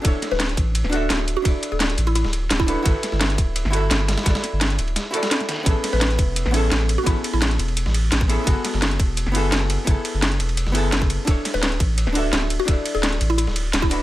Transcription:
<<
  \new Staff \with { instrumentName = "Hollow-body jazz guitar" } { \time 4/4 \key d \lydian \tempo 4 = 171 <d' e' fis' a' cis''>2~ <d' e' fis' a' cis''>8 <d' e' fis' a' e''>4. | <d' e' fis' a' d''>2.~ <d' e' fis' a' d''>8 <d' e' fis' a' b'>8 | <e' fis' g' a' b'>2~ <e' fis' g' a' b'>8 <e' fis' g' a' e''>4. | <e' fis' g' a' d''>2~ <e' fis' g' a' d''>8 <e' fis' g' a' d''>4. |
<b cis' e' gis' a'>2~ <b cis' e' gis' a'>8 <b cis' e' gis' a'>4. | <b cis' e' gis' a'>2.~ <b cis' e' gis' a'>8 <b cis' e' gis' a'>8 | <b e' fis' gis' a'>2~ <b e' fis' gis' a'>8 <b e' fis' gis' a'>4. | <b e' fis' gis' a'>2~ <b e' fis' gis' a'>8 <b e' fis' gis' a'>4. |
<d' e' fis' a' cis''>2~ <d' e' fis' a' cis''>8 <d' e' fis' a' e''>4. | <d' e' fis' a' d''>2.~ <d' e' fis' a' d''>8 <d' e' fis' a' b'>8 | }
  \new Staff \with { instrumentName = "Synth pluck" } { \time 4/4 \key d \lydian r8. b'8 r2 r8 fis'16 | r8. a'8 r8 e'16 e'16 r4 e'8. | r1 | r1 |
r8. b'8 r2 r8 fis'16 | e'8. e'4 r2 r16 | r1 | r1 |
r8. b'8 r2 r8 fis'16 | r8. a'8 r8 e'16 e'16 r4 e'8. | }
  \new Staff \with { instrumentName = "Sub bass" } { \clef bass \time 4/4 \key d \lydian d,,16 r8 d,,8. a,,8. d,,8. d,,8. r16 | d,,16 r8 d,,8. a,,8. d,,8. d,,8. r16 | g,,16 r8 g,,8. d,,8. g,,8. g,,8. r16 | g,,16 r8 g,,8. d,,8 r2 |
a,,16 r8 a,,8. e,,8. a,,8. a,,8. r16 | a,,16 r8 a,,8. e,,8. a,,8. a,,8. r16 | fis,,16 r8 fis,,8. e,,8. fis,,8. fis,,8. r16 | fis,,16 r8 fis,,8. e,,8. fis,,8. fis,,8. r16 |
d,,16 r8 d,,8. a,,8. d,,8. d,,8. r16 | d,,16 r8 d,,8. a,,8. d,,8. d,,8. r16 | }
  \new DrumStaff \with { instrumentName = "Drums" } \drummode { \time 4/4 <hh bd cymr>8 <hh cymr sn>16 sn16 <hh cymr sn>16 hh16 <hh bd cymr>8 <hh cymr>16 sn16 <hh cymr>8 <hh cymr sn>16 sn16 <hh cymr>8 | <hh bd cymr>8 <hh cymr>8 <hh cymr sn>16 hh16 <hh cymr>16 cymr16 <hh cymr>16 sn16 <hh cymr>8 <hh cymr sn>16 bd16 <hh cymr>8 | <hh bd cymr>8 <hh cymr sn>16 sn16 <hh cymr sn>16 hh16 <hh bd cymr>8 <hh cymr>16 sn16 <hh cymr>8 <hh cymr sn>16 sn16 <hh cymr sn>16 <cymr sn>16 | <hh bd cymr sn>16 <cymr sn>16 <hh cymr sn>8 <hh cymr sn>16 hh16 <hh cymr>16 cymr16 <hh cymr sn>8 <hh cymr>16 <hh cymr sn>16 <hh cymr sn>16 <hh sn>16 <hh cymr sn>8 |
<hh bd cymr>8 <hh cymr sn>16 sn16 <hh cymr sn>16 hh16 <hh bd cymr>8 <hh cymr>16 sn16 <hh cymr>8 <hh cymr sn>16 sn16 <hh cymr>8 | <hh bd cymr>8 <hh cymr>8 <hh cymr sn>16 hh16 <hh cymr>16 cymr16 <hh cymr>16 sn16 <hh cymr>8 <hh cymr sn>16 bd16 <hh cymr>8 | <hh bd cymr>8 <hh cymr sn>16 sn16 <hh cymr sn>16 hh16 <hh bd cymr>8 <hh cymr>16 sn16 <hh cymr>8 <hh cymr sn>16 sn16 <hh cymr>8 | <hh bd cymr>8 <hh cymr>8 <hh cymr sn>16 hh16 <hh cymr>16 cymr16 <hh cymr>16 sn16 <hh cymr>8 <hh cymr sn>16 bd16 <hh cymr>8 |
<hh bd cymr>8 <hh cymr sn>16 sn16 <hh cymr sn>16 hh16 <hh bd cymr>8 <hh cymr>16 sn16 <hh cymr>8 <hh cymr sn>16 sn16 <hh cymr>8 | <hh bd cymr>8 <hh cymr>8 <hh cymr sn>16 hh16 <hh cymr>16 cymr16 <hh cymr>16 sn16 <hh cymr>8 <hh cymr sn>16 bd16 <hh cymr>8 | }
>>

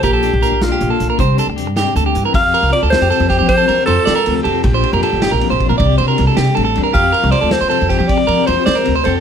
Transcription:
<<
  \new Staff \with { instrumentName = "Alto saxophone" } { \time 12/8 \key f \major \tempo 4. = 104 g'4. f'4. r2. | f''4 d''8 c''4 c''8 c''4 a'4. g'8 | g'2. r2. | f''4 d''8 c''4 c''8 d''4 c''4. c''8 | }
  \new Staff \with { instrumentName = "Clean electric guitar" } { \time 12/8 \key f \major bes'16 a'8 r16 bes'8 r16 g'8 a'8 bes'16 c''8 a'16 r8. g'8 a'16 g'8 bes'16 | r8 bes'8 r16 a'8 g'16 a'8 g'16 g'8 a'16 bes'8 c''8 d''16 bes'8 r16 a'8 | r16 c''8 bes'16 a'8 g'16 bes'8 c''8 bes'16 d''8 c''16 bes'8 a'16 g'8 a'16 a'8 bes'16 | g'8 bes'8 c''16 a'8 c''16 a'8 g'16 g'8 r16 bes'8 c''8 d''16 bes'8 c''16 a'8 | }
  \new Staff \with { instrumentName = "Clean electric guitar" } { \time 12/8 \key f \major << { r8 d'8 d'8 d'8 bes8 d'8 <g c' d' g'>8 d'8 g'2 | g'8 r16 g'8. c'4 g'8 g'8 g'4 c'4 c'8 | c'16 r16 d'4 bes4 d'8 g'8 d'4 c'4 d'8 | f'16 g'16 f'16 g'8. c'4 g'8 g'8 g'4 c'4 g'8 | } \\ { bes,2. c4. c8 d8 e8 | f,4 f4 c4 f,4 f4 c4 | bes,4 f4 f,4 c4 g4 g,4 | f,4 f4 c4 f,4 f4 c4 | } >> }
  \new Staff \with { instrumentName = "Upright bass" } { \clef bass \time 12/8 \key f \major bes,,8. bes,,16 r16 bes,,8 r16 bes,,16 r16 bes,,16 r16 c,8 r16 d,8 g,8 r16 d,8 g,16 r16 | f,8 r16 c,16 r16 d,8 f,16 r16 f,8 f8. f16 r16 f,16 r16 f16 r16 d,8 f,8 | bes,,8 r16 f,16 r16 g,,8 bes,,16 r16 bes,,8 bes,16 c,8 c16 r16 c,16 r16 c16 r16 a,,8 e,8 | f,8 r16 c,16 r16 d,8 f,16 r16 f,8 f8. f16 r16 f,16 r16 f16 r16 d,8 f,8 | }
  \new DrumStaff \with { instrumentName = "Drums" } \drummode { \time 12/8 <hh bd>8 hh8 hh8 <hh sn>8 hh8 hh8 <hh bd>8 hh8 hh8 <hh sn>8 hh8 hh8 | <bd cymr>8 cymr8 cymr8 <cymr sn>8 cymr8 <bd cymr sn>8 <bd cymr>8 cymr8 cymr8 <cymr sn>8 cymr8 cymr8 | <bd cymr>8 cymr8 cymr8 <cymr sn>8 cymr8 <bd cymr>8 <bd cymr>8 cymr8 cymr8 <cymr sn>8 cymr8 cymr8 | <bd cymr>8 cymr8 cymr8 <cymr sn>8 cymr8 <bd cymr sn>8 <bd cymr>8 cymr8 cymr8 <cymr sn>8 cymr8 cymr8 | }
>>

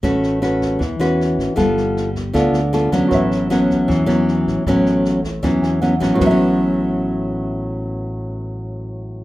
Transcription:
<<
  \new Staff \with { instrumentName = "Grand piano" } { \time 4/4 \key a \major \tempo 4 = 156 << { r1 | r1 | r1 | r2 r8 gis''8 fis''4 |
r1 | r1 | } \\ { r1 | r1 | <fis' b' cis'' e''>1~ | <fis' b' cis'' e''>1 |
<fis' b' cis'' e''>1~ | <fis' b' cis'' e''>1 | } >> }
  \new Staff \with { instrumentName = "Nylon-string guitar" } { \time 4/4 \key a \major << { <cis' fis' b'>4 <cis' fis' b'>4 r8 <cis' fis' b'>4. | <b f' a'>4. r8 <b f' a'>8 r8 <b f' a'>8 <fis b cis'>8~ | <fis b cis'>4 <fis b cis'>4. <fis b cis'>4. | <fis b cis'>4. r8 <fis b cis'>4 <fis b cis'>8 <fis b cis'>8~ |
<fis b cis'>4 r2. | r1 | } \\ { a2 e2 | g2 d2 | a,2 e2 | a,2 e2 |
<a, fis b cis'>1~ | <a, fis b cis'>1 | } >> }
  \new Staff \with { instrumentName = "Fingered electric bass" } { \clef bass \time 4/4 \key a \major a,,2 e,8 e,4 a,,16 r16 | g,,2 d,8 d,4 e,16 r16 | a,,2 e,8 e,4 a,,16 r16 | a,,2 e,8 e,4 a,,16 r16 |
a,,1~ | a,,1 | }
  \new DrumStaff \with { instrumentName = "Drums" } \drummode { \time 4/4 <bd sn>8 sn8 <ss sn>8 <bd sn>8 <bd sn>8 <ss sn>8 sn8 <bd sn>8 | <bd ss sn>8 sn8 sn8 <bd sn>8 <bd ss sn>8 sn8 sn8 <bd ss sn>8 | <bd sn>8 sn8 <ss sn>8 <bd sn>8 <bd sn>8 <ss sn>8 sn8 <bd sn>8 | <bd ss sn>8 sn8 sn8 <bd sn>8 <bd ss sn>8 sn8 sn8 <bd ss sn>8 |
<hho bd tomfh>4 r4 r4 r4 | r4 r4 r4 r4 | }
>>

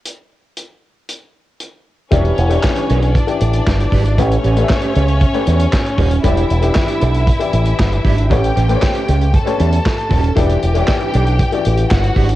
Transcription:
<<
  \new Staff \with { instrumentName = "String section" } { \time 4/4 \key e \dorian \tempo 4 = 116 r1 | <cis' cis''>2 <d' d''>2 | <cis' cis''>1 | <e' e''>1 |
<g' g''>2 <a' a''>2 | <g' g''>2. <fis' fis''>4 | }
  \new Staff \with { instrumentName = "Clean electric guitar" } { \time 4/4 \key e \dorian r1 | <d' g' b'>8 r16 <d' g' b'>16 r16 <d' g' b'>16 <d' g' b'>8 r4. <d' g' b'>8 | <cis' g' b'>8 <cis' g' b'>16 <cis' g' b'>16 r16 <cis' g' b'>16 <cis' g' b'>16 r8 <cis' g' b'>16 <cis' g' b'>16 r8. <cis' g' b'>8 | <d' g' b'>8 r16 <d' g' b'>16 r16 <d' g' b'>16 <d' g' b'>8 r4. <d' g' b'>8 |
<cis' g' b'>8 <cis' g' b'>16 <cis' g' b'>16 r16 <cis' g' b'>16 <cis' g' b'>16 r8 <cis' g' b'>16 <cis' g' b'>16 r8. <cis' g' b'>8 | <d' g' b'>8 r16 <d' g' b'>16 r16 <d' g' b'>16 <d' g' b'>8 r4. <d' g' b'>8 | }
  \new Staff \with { instrumentName = "Grand piano" } { \time 4/4 \key e \dorian r1 | <e d' e' g'>8 r16 <e d' e' g'>4~ <e d' e' g'>16 r16 <e e' g' d''>4. r16 | <a g' b' cis''>8 r16 <a g' b' d'' e''>4~ <a g' b' d'' e''>16 r16 <a g' b' cis''>4. r16 | <e e' g' d''>8 r16 <e e' g' d''>4~ <e e' g' d''>16 r16 <e e' g' d''>4. r16 |
<a g' b' cis''>8 r16 <a g' b' c'' cis''>4~ <a g' b' c'' cis''>16 r16 <a g' b' cis''>4. r16 | <e e' g' d''>8 r16 <e e' g' cis'' d''>4~ <e e' g' cis'' d''>16 r16 <e e' fis' g' d''>4. r16 | }
  \new Staff \with { instrumentName = "Fingered electric bass" } { \clef bass \time 4/4 \key e \dorian r1 | e,,8 e,,8 r8 b,,8. r16 a,,8 g,,8 gis,,8 | a,,8 a,,8 r8 cis,8. r16 e,8 r8 dis,,8 | e,,8 e,,8 r8 b,,8. r16 a,,8 g,,8 gis,,8 |
a,,8 a,,8 r8 cis,8. r16 e,8 r8 dis,,8 | e,,8 e,,8 r8 b,,8. r16 a,,8 g,,8 gis,,8 | }
  \new DrumStaff \with { instrumentName = "Drums" } \drummode { \time 4/4 hh4 hh4 hh4 hh4 | <hh bd>16 hh16 hh16 hh16 <hc bd sn>16 hh16 hh16 hh16 <hh bd>16 hh16 hh16 hh16 <hc bd sn>16 hh16 <hho bd sn>16 hh16 | <hh bd>16 hh16 hh16 hh16 <hc bd sn>16 hh16 hh16 hh16 <hh bd>16 hh16 hh16 hh16 <hc bd sn>16 hh16 <hho bd>16 hh16 | <hh bd>16 hh16 hh16 hh16 <hc bd sn>16 hh16 hh16 hh16 <hh bd>16 hh16 hh16 hh16 <hc bd sn>16 hh16 <hho bd sn>16 hh16 |
<hh bd>16 hh16 hh16 hh16 <hc bd sn>16 hh16 hh16 hh16 <hh bd>16 hh16 hh16 hh16 <hc bd sn>16 hh16 <hho bd sn>16 hh16 | <hh bd>16 hh16 hh16 hh16 <hc bd sn>16 hh16 hh16 hh16 <hh bd>16 hh16 hh16 hh16 <hc bd sn>16 hh16 <hho bd>16 hh16 | }
>>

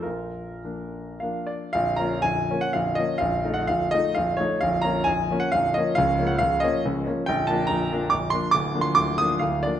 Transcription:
<<
  \new Staff \with { instrumentName = "Grand piano" } { \time 3/4 \key bes \major \tempo 4 = 131 << { bes'2 f''8 d''8 | \key bes \minor f''8 bes''8 aes''8. ges''16 f''8 ees''8 | f''8. ges''16 f''8 ees''8 f''8 des''8 | f''8 bes''8 aes''8. ges''16 f''8 ees''8 |
f''8. ges''16 f''8 ees''8 r4 | \key bes \major g''8 a''8 bes''4 d'''8 c'''8 | d'''8. c'''16 d'''8 ees'''8 f''8 d''8 | } \\ { f'2~ f'8 r8 | r2. | r2. | r2. |
r2. | r2. | r2. | } >> }
  \new Staff \with { instrumentName = "Grand piano" } { \clef bass \time 3/4 \key bes \major bes,,4 <f bes d'>4 <f bes d'>4 | \key bes \minor <bes,,, bes,,>8 <f bes des'>8 <bes,,, bes,,>8 <f bes des'>8 <bes,,, bes,,>8 <f bes des'>8 | <bes,,, bes,,>8 <f a ees'>8 <bes,,, bes,,>8 <f a ees'>8 <bes,,, bes,,>8 <f a ees'>8 | <bes,,, bes,,>8 <f bes des'>8 <bes,,, bes,,>8 <f bes des'>8 <bes,,, bes,,>8 <f bes des'>8 |
<des,, des,>8 <f bes des'>8 <des,, des,>8 <f bes des'>8 <des,, des,>8 <f bes des'>8 | \key bes \major <bes,,, bes,,>8 <f bes d'>8 <bes,,, bes,,>8 <f bes d'>8 <bes,,, bes,,>8 <f bes d'>8 | <d,, d,>8 <f bes d'>8 <d,, d,>8 <f bes d'>8 <d,, d,>8 <f bes d'>8 | }
>>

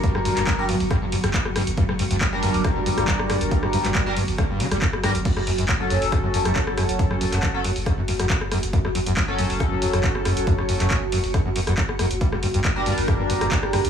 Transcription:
<<
  \new Staff \with { instrumentName = "Synth drone" } { \time 4/4 \key g \lydian \tempo 4 = 138 <fis fis'>1~ | <fis fis'>1~ | <fis fis'>1 | fis'1~ |
fis'1~ | fis'1~ | fis'1~ | fis'1 | }
  \new Staff \with { instrumentName = "Analog polysynth" } { \time 4/4 \key g \lydian <g d' bes'>4~ <g d' bes'>16 <g d' bes'>16 r2 r8 | r4 r16 <g d' bes'>2~ <g d' bes'>8.~ | <g d' bes'>4~ <g d' bes'>16 <g d' bes'>16 r2 <g d' bes'>16 r16 | r4 r16 <fis cis' a'>2~ <fis cis' a'>8.~ |
<fis cis' a'>4~ <fis cis' a'>16 <fis cis' a'>16 r2 r8 | r4 r16 <fis cis' a'>2~ <fis cis' a'>8.~ | <fis cis' a'>4~ <fis cis' a'>16 r2 r8. | r4 r16 <g d' bes'>2~ <g d' bes'>8. | }
  \new Staff \with { instrumentName = "Acid bass" } { \clef bass \time 4/4 \key g \lydian g,16 g,16 g,16 g,16 g16 r16 g,16 r16 g,16 g,16 g,16 g,16 g16 r16 g,16 r16 | g,16 g,16 g,16 g,16 g16 r16 g,16 r16 g,16 g,16 g,16 g,16 g16 r16 g,16 r16 | g,16 g,16 g,16 g,16 g16 r16 g,16 r16 g,16 g,16 d16 g16 g,16 r16 g,16 r16 | fis,16 fis,16 fis,16 fis,16 fis16 r16 fis,16 r16 fis,16 fis,16 fis,16 fis,16 fis16 r16 fis,16 r16 |
fis,16 fis,16 fis,16 fis,16 fis16 r16 fis,16 r16 fis,16 fis,16 fis,16 fis,16 fis16 r16 fis,16 r16 | fis,16 fis,16 fis,16 fis,16 fis16 r16 fis,16 r16 fis,16 fis,16 fis,16 fis,16 fis16 r16 fis,16 r16 | fis,16 fis,16 fis,16 fis,16 fis16 r16 fis,16 r16 fis,16 fis,16 fis,16 fis,16 fis16 r16 fis,16 r16 | g,16 g,16 g,16 g,16 g16 r16 g,16 r16 g,16 g,16 g,16 g,16 g16 r16 g,16 r16 | }
  \new Staff \with { instrumentName = "Sub bass" } { \clef bass \time 4/4 \key g \lydian r8 g,,16 g,,16 r8 g,,16 g,,16 r8 g,,16 g,,16 r8 g,,16 g,,16 | r8 g,,16 g,,16 r8 g,,16 g,,16 r8 g,,16 g,,16 r8 g,,16 g,,16 | r8 g,,16 g,,16 r8 g,,16 g,,16 r8 g,,16 g,,16 r8 g,,16 g,,16 | r8 fis,,16 fis,,16 r8 fis,,16 fis,,16 r8 fis,,16 fis,,16 r8 fis,,16 fis,,16 |
r8 fis,,16 fis,,16 r8 fis,,16 fis,,16 r8 fis,,16 fis,,16 r8 fis,,16 fis,,16 | r8 fis,,16 fis,,16 r8 fis,,16 fis,,16 r8 fis,,16 fis,,16 r8 fis,,16 fis,,16 | r8 fis,,16 fis,,16 r8 fis,,16 fis,,16 r8 fis,,16 fis,,16 r8 fis,,16 fis,,16 | r8 g,,16 g,,16 r8 g,,16 g,,16 r8 g,,16 g,,16 r8 g,,16 g,,16 | }
  \new DrumStaff \with { instrumentName = "Drums" } \drummode { \time 4/4 <hh bd>16 ss16 hho16 <hc hh>16 <hc hh bd>8 hho16 hho16 <hh bd ss>8 hho16 <hh ss>16 <hc hh bd>16 ss16 <hho ss>16 hh16 | <hh bd>16 ss16 hho16 hh16 <hc hh bd>8 hho16 hho16 <hh bd ss>8 hho16 <hh ss>16 <hc hh bd>16 ss16 <hho ss>16 hh16 | <hh bd>16 ss16 hho16 <hc hh>16 <hc hh bd>8 hho16 hho16 <hh bd ss>8 hho16 <hh ss>16 <hc hh bd>16 ss16 <hho ss>16 hh16 | <cymc hh bd>16 ss16 hho16 hh16 <hc hh bd>8 hho16 hho16 <hh bd ss>8 hho16 <hh ss>16 <hc hh bd>16 ss16 <hho ss>16 hh16 |
<hh bd>16 ss16 hho16 <hc hh>16 <hc hh bd>8 hho16 hho16 <hh bd ss>8 hho16 <hh ss>16 <hc hh bd>16 ss16 <hho ss>16 hh16 | <hh bd>16 ss16 hho16 hh16 <hc hh bd>8 hho16 hho16 <hh bd ss>8 hho16 <hh ss>16 <hc hh bd>16 ss16 <hho ss>16 hh16 | <hh bd>16 ss16 hho16 <hc hh>16 <hc hh bd>8 hho16 hho16 <hh bd ss>8 hho16 <hh ss>16 <hc hh bd>16 ss16 <hho ss>16 hh16 | <hh bd>16 ss16 hho16 hh16 <hc hh bd>8 hho16 hho16 <hh bd ss>8 hho16 <hh ss>16 <hc hh bd>16 ss16 <hho ss>16 hh16 | }
>>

